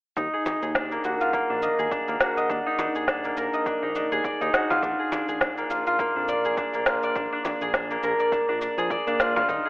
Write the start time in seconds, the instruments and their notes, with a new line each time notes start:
0.17 analog synth bass D#2, harp D#4, kick, shaker
0.33 harp G#4
0.46 harp D#4, low conga, shaker
0.62 analog synth bass D#2, harp G#4, shaker
0.75 harp D4, kick, snare, shaker
0.92 harp A#3, shaker
1.04 analog synth bass D#2, harp F#4, shaker
1.21 harp F4, shaker
1.33 harp A#3, kick, shaker
1.50 analog synth bass A#1, harp D4
1.62 harp D#5, shaker
1.79 analog synth bass D#2, harp G#4, shaker
1.91 harp D4, kick, shaker
2.08 analog synth bass D#2, harp A#3, shaker
2.21 harp F#4, snare, shaker
2.37 harp D#5, shaker
2.50 analog synth bass D#2, harp D4, kick, shaker
2.66 harp D#4
2.79 harp D4, low conga, shaker
2.95 analog synth bass D#2, harp G#4, shaker
3.08 harp D4, kick, snare, shaker
3.24 harp A#3, shaker
3.37 analog synth bass D#2, harp A#4, shaker
3.54 harp D#5, shaker
3.66 harp D4, kick, shaker
3.83 analog synth bass A#1, harp D#4
3.95 harp D4, shaker
4.11 analog synth bass D#2, harp G#4, shaker
4.24 harp D5, kick, shaker
4.41 analog synth bass D#2, harp D#4, shaker
4.54 harp F#4, snare, shaker
4.70 harp F4, low conga, shaker
4.82 analog synth bass A#1, harp D4, kick, shaker
4.99 harp G#4
5.12 harp D4, low conga, shaker
5.28 analog synth bass A#1, harp G#4, shaker
5.41 harp D4, kick, snare, shaker
5.58 harp A#3, shaker
5.70 analog synth bass A#1, harp F4, shaker
5.87 harp F4, shaker
5.99 harp A#3, kick, shaker
6.16 analog synth bass F2, harp D4
6.28 harp D5, shaker
6.45 analog synth bass A#1, harp G#4, shaker
6.57 harp D4, kick, shaker
6.74 analog synth bass A#1, harp A#3, shaker
6.86 harp F4, snare, shaker
7.03 harp D5, shaker
7.16 analog synth bass A#1, harp D4, kick, shaker
7.32 harp D4
7.45 harp D4, low conga, shaker
7.61 analog synth bass A#1, harp G#4, shaker
7.74 harp D4, kick, snare, shaker
7.91 harp A#3, shaker
8.03 analog synth bass A#1, harp A#4, shaker
8.20 harp D5, shaker
8.32 harp D4, kick, shaker
8.49 analog synth bass A#1, harp D4
8.61 harp D4, shaker
8.78 analog synth bass F2, harp G#4, shaker
8.90 harp D5, kick, shaker
9.07 analog synth bass A#2, harp D4, shaker
9.20 harp F4, snare, shaker
9.36 harp F4, low conga, shaker
9.49 analog synth bass D#2, harp D#4, kick, shaker
9.65 harp G#4